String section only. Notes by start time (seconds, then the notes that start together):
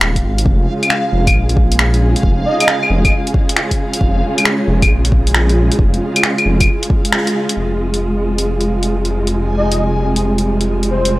Already playing: C3 G#3 F4 G4
0.46 C#3
0.85 G#4
7.58 C3
8.41 G3